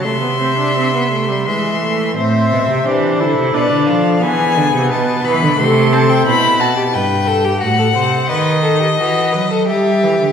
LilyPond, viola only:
\new Staff \with { instrumentName = "Viola" } { \time 3/4 \key a \minor \tempo 4 = 88 a16 b16 c'16 d'16 c'16 b16 a16 g16 gis8 a8 | c'4 d'8 e'8 d'4 | b2 a8 c'8 | r2. |
r2. | }